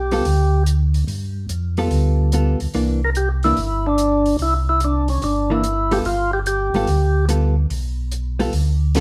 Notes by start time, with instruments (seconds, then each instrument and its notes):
Already playing: tonewheel organ B1 G4
0.11 hollow-body jazz guitar G3 B3 F4 A4, open hi-hat
0.25 tonewheel organ D2, open hi-hat
0.66 closed hi-hat
0.94 open hi-hat
1.07 tonewheel organ G2, open hi-hat
1.49 tonewheel organ F2, closed hi-hat
1.77 hollow-body jazz guitar G3 B3 F4 A4, open hi-hat
1.91 tonewheel organ D2, open hi-hat
2.32 hollow-body jazz guitar G3 B3 F4 A4, closed hi-hat
2.60 tonewheel organ D2, open hi-hat
2.74 tonewheel organ C2, hollow-body jazz guitar E3 A#3 D4, open hi-hat
3.04 tonewheel organ A#4
3.15 tonewheel organ G4, closed hi-hat
3.43 hollow-body jazz guitar E3 A#3 D4, tonewheel organ E4, open hi-hat
3.57 tonewheel organ G1, open hi-hat
3.87 tonewheel organ D4
3.98 closed hi-hat
4.26 open hi-hat
4.39 tonewheel organ C2 E4, open hi-hat
4.69 tonewheel organ E4
4.80 closed hi-hat
4.84 tonewheel organ D4
5.08 tonewheel organ C#4, open hi-hat
5.22 tonewheel organ G1 D4, open hi-hat
5.50 hollow-body jazz guitar E3 A#3 D4, tonewheel organ E4
5.64 closed hi-hat
5.91 hollow-body jazz guitar G3 B3 F4 A4, tonewheel organ G4, open hi-hat
6.05 tonewheel organ G1 F4, open hi-hat
6.33 tonewheel organ G4
6.46 tonewheel organ G4, closed hi-hat
6.74 tonewheel organ G#1, hollow-body jazz guitar G3 B3 F4 A4, open hi-hat
6.87 tonewheel organ D2, open hi-hat
7.29 hollow-body jazz guitar G3 B3 F4 A4, closed hi-hat
7.70 tonewheel organ B1, open hi-hat
8.12 closed hi-hat
8.39 hollow-body jazz guitar G3 B3 F4 A4, open hi-hat
8.53 tonewheel organ D2, open hi-hat
8.95 hollow-body jazz guitar G3 B3 F4 A4, snare, closed hi-hat